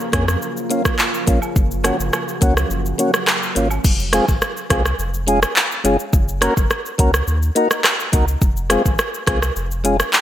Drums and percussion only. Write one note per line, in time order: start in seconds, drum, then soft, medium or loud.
0.00 shaker soft
0.13 kick medium
0.13 cross-stick loud
0.13 closed hi-hat medium
0.13 cabasa medium
0.13 shaker medium
0.28 cross-stick medium
0.28 shaker medium
0.42 shaker medium
0.57 shaker medium
0.70 closed hi-hat medium
0.70 cabasa medium
0.70 shaker medium
0.85 kick medium
0.85 cross-stick loud
0.85 shaker medium
0.99 clap medium
0.99 high woodblock medium
0.99 shaker medium
1.14 shaker medium
1.27 kick medium
1.27 closed hi-hat medium
1.27 cabasa medium
1.27 shaker medium
1.42 high woodblock medium
1.42 shaker medium
1.56 kick loud
1.56 shaker medium
1.71 shaker medium
1.84 cross-stick medium
1.84 closed hi-hat medium
1.84 cabasa medium
1.84 high woodblock medium
1.84 shaker medium
2.00 shaker medium
2.13 cross-stick medium
2.13 high woodblock medium
2.13 shaker medium
2.28 shaker soft
2.41 kick medium
2.41 closed hi-hat medium
2.41 cabasa medium
2.41 shaker medium
2.57 cross-stick medium
2.57 shaker medium
2.71 shaker medium
2.86 shaker medium
2.99 closed hi-hat medium
2.99 cabasa medium
2.99 shaker medium
3.14 cross-stick medium
3.14 shaker medium
3.27 cross-stick medium
3.27 clap loud
3.27 high woodblock medium
3.27 shaker medium
3.43 shaker medium
3.56 closed hi-hat medium
3.56 cabasa medium
3.56 shaker medium
3.71 high woodblock medium
3.71 shaker medium
3.84 kick loud
3.84 crash loud
3.84 shaker medium
4.00 shaker medium
4.13 cross-stick loud
4.13 closed hi-hat medium
4.13 shaker medium
4.28 kick medium
4.28 shaker medium
4.42 cross-stick medium
4.42 shaker medium
4.57 shaker soft
4.70 kick medium
4.70 cross-stick loud
4.70 closed hi-hat medium
4.70 shaker medium
4.86 cross-stick medium
4.86 shaker medium
4.99 shaker medium
5.14 shaker medium
5.28 closed hi-hat medium
5.28 shaker medium
5.43 cross-stick loud
5.43 shaker medium
5.56 clap loud
5.56 shaker medium
5.72 shaker medium
5.85 closed hi-hat medium
5.85 shaker medium
6.00 shaker medium
6.13 kick loud
6.13 shaker medium
6.28 shaker medium
6.42 cross-stick loud
6.42 closed hi-hat medium
6.42 shaker medium
6.57 kick medium
6.57 shaker medium
6.70 cross-stick medium
6.70 shaker medium
6.86 shaker soft
6.99 kick loud
6.99 closed hi-hat medium
6.99 shaker medium
7.14 cross-stick medium
7.14 shaker medium
7.27 shaker medium
7.42 shaker medium
7.56 closed hi-hat medium
7.56 shaker medium
7.71 cross-stick loud
7.71 shaker medium
7.84 cross-stick loud
7.84 clap loud
7.84 shaker medium
8.00 shaker medium
8.13 kick loud
8.13 closed hi-hat medium
8.13 shaker medium
8.28 shaker medium
8.42 kick loud
8.42 shaker medium
8.57 shaker medium
8.70 cross-stick loud
8.70 closed hi-hat medium
8.70 shaker medium
8.86 kick medium
8.86 shaker medium
8.99 cross-stick loud
8.99 shaker medium
9.14 shaker medium
9.27 kick loud
9.27 cross-stick loud
9.27 closed hi-hat medium
9.27 shaker medium
9.42 cross-stick medium
9.42 shaker medium
9.56 shaker medium
9.71 shaker medium
9.85 closed hi-hat medium
9.85 shaker medium
10.00 cross-stick loud
10.00 shaker medium
10.13 clap loud
10.13 shaker medium